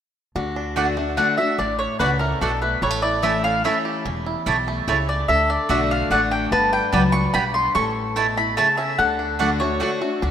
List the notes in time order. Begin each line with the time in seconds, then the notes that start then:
0.35 D2 D3 D4 F#4
0.56 D4
0.76 D3 A3 D4 F#4 D5 F#5
0.97 A3 D4 F#4
1.17 D3 A3 D4 F#4 D5 F#5
1.37 A3 D4 F#4 E5
1.58 A1 A2 D4 D5
1.79 C#5
1.99 C#2 A3 C#4 D4 F#4 B4 D5 F#5
2.19 A3 A#4
2.41 B1 B2 A3 D4 F#4 A4 D5 F#5
2.62 A3 B4
2.82 A1 A2 G3 A4 C#5
2.90 A3
3.02 E4 D5
3.22 E3 A3 C#4 E4 C#5 E5 A5
3.44 C#4 F5
3.64 E3 A3 C#4 E4 C#5 E5 A5
3.85 G4
4.05 E1 E2 C#4
4.26 E4
4.46 B1 B2 A3 E4 G4 C#5 A5
4.68 A3
4.88 C#2 C#3 A3 E4 C#5 A5
5.09 A3 D5
5.28 D2 D3 A3 A4 E5
5.50 D4 D5
5.69 B1 D3 A3 D4 F#4 D5 E5 F#5
5.91 D4 F5
6.10 A1 D3 A3 D4 F#4 D5 F#5
6.31 D4 G5
6.51 G1 G2 B3 B4 A5
6.73 D4 G5
6.92 C#2 F#3 G3 B3 G4 D5 G5 A5
7.12 D4 C#6
7.34 B1 G2 G3 B3 G4 D5 G5 B5
7.54 B3 C6
7.75 A1 A2 C#4 A4 C#6
8.16 B2 A3 E4 C#5 A5
8.37 E4 B5
8.57 C#3 A3 E4 C#5 A5
8.77 C#4 E5
8.98 D2 D3 D4 A4 F#5
9.19 D4
9.39 D3 A3 D4 F#4 D5 F#5
9.60 A3 D4 F#4 C#5
9.80 D3 A3 D4 F#4 D5 F#5
10.01 A3 D4 F#4
10.22 D2 D3 D4 F#4